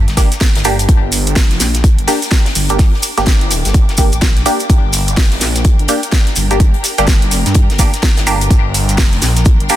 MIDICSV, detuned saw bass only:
0, 0, Header, 1, 2, 480
1, 0, Start_track
1, 0, Key_signature, -2, "minor"
1, 0, Tempo, 476190
1, 894, Time_signature, 4, 2, 24, 8
1, 9840, End_track
2, 0, Start_track
2, 0, Title_t, "Detuned saw bass"
2, 0, Program_c, 0, 39
2, 80, Note_on_c, 0, 31, 92
2, 297, Note_off_c, 0, 31, 0
2, 560, Note_on_c, 0, 31, 99
2, 639, Note_off_c, 0, 31, 0
2, 653, Note_on_c, 0, 31, 91
2, 879, Note_off_c, 0, 31, 0
2, 894, Note_on_c, 0, 31, 93
2, 1359, Note_off_c, 0, 31, 0
2, 1374, Note_on_c, 0, 29, 90
2, 1599, Note_off_c, 0, 29, 0
2, 1615, Note_on_c, 0, 34, 98
2, 1977, Note_off_c, 0, 34, 0
2, 2001, Note_on_c, 0, 31, 89
2, 2079, Note_off_c, 0, 31, 0
2, 2574, Note_on_c, 0, 31, 96
2, 2937, Note_off_c, 0, 31, 0
2, 3201, Note_on_c, 0, 31, 93
2, 3657, Note_off_c, 0, 31, 0
2, 3681, Note_on_c, 0, 31, 92
2, 3897, Note_off_c, 0, 31, 0
2, 3920, Note_on_c, 0, 31, 97
2, 4137, Note_off_c, 0, 31, 0
2, 4161, Note_on_c, 0, 33, 92
2, 4239, Note_off_c, 0, 33, 0
2, 4254, Note_on_c, 0, 34, 95
2, 4479, Note_off_c, 0, 34, 0
2, 4734, Note_on_c, 0, 31, 92
2, 5199, Note_off_c, 0, 31, 0
2, 5213, Note_on_c, 0, 29, 90
2, 5439, Note_off_c, 0, 29, 0
2, 5453, Note_on_c, 0, 34, 93
2, 5816, Note_off_c, 0, 34, 0
2, 5839, Note_on_c, 0, 31, 92
2, 5918, Note_off_c, 0, 31, 0
2, 6413, Note_on_c, 0, 31, 89
2, 6776, Note_off_c, 0, 31, 0
2, 7039, Note_on_c, 0, 31, 97
2, 7496, Note_off_c, 0, 31, 0
2, 7520, Note_on_c, 0, 43, 91
2, 7737, Note_off_c, 0, 43, 0
2, 7759, Note_on_c, 0, 31, 92
2, 7976, Note_off_c, 0, 31, 0
2, 8240, Note_on_c, 0, 31, 96
2, 8319, Note_off_c, 0, 31, 0
2, 8333, Note_on_c, 0, 31, 93
2, 8559, Note_off_c, 0, 31, 0
2, 8574, Note_on_c, 0, 31, 91
2, 9039, Note_off_c, 0, 31, 0
2, 9054, Note_on_c, 0, 29, 94
2, 9279, Note_off_c, 0, 29, 0
2, 9294, Note_on_c, 0, 34, 92
2, 9657, Note_off_c, 0, 34, 0
2, 9680, Note_on_c, 0, 31, 94
2, 9759, Note_off_c, 0, 31, 0
2, 9840, End_track
0, 0, End_of_file